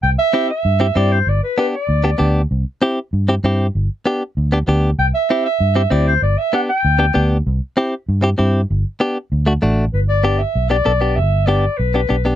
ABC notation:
X:1
M:4/4
L:1/8
Q:1/4=194
K:G
V:1 name="Clarinet"
g e2 e3 d c | d B B d4 z | z8 | z8 |
g e2 e3 d c | d e f g4 z | z8 | z8 |
B d2 e2 d3 | e2 d2 B3 z |]
V:2 name="Clean electric guitar"
z2 [CEG] z2 [CEG] [CEG] z | z2 [B,DG] z2 [B,DG] [B,DG] z | z2 [CEG] z2 [CEG] [CEG] z | z2 [B,DG] z2 [B,DG] [B,DG] z |
z2 [CEG] z2 [CEG] [CEG] z | z2 [B,DG] z2 [B,DG] [B,DG] z | z2 [CEG] z2 [CEG] [CEG] z | z2 [B,DG] z2 [A,DF] [A,DF] z |
z2 [B,DG] z2 [B,DG] [B,DA] [B,DG] | z2 [B,DG] z2 [B,DG] [B,DG] [B,DG] |]
V:3 name="Fingered electric bass" clef=bass
C,, z3 G,,2 G,,2 | G,,, z3 D,,2 D,,2 | C,, z3 G,,2 G,,2 | G,,, z3 D,,2 D,,2 |
C,, z3 G,,2 D,,2 | G,,, z3 D,,2 D,,2 | C,, z3 G,,2 G,,2 | G,,, z3 D,,2 A,,,2 |
G,,,4 B,,,2 B,,,2 | G,,,4 B,,,2 B,,,2 |]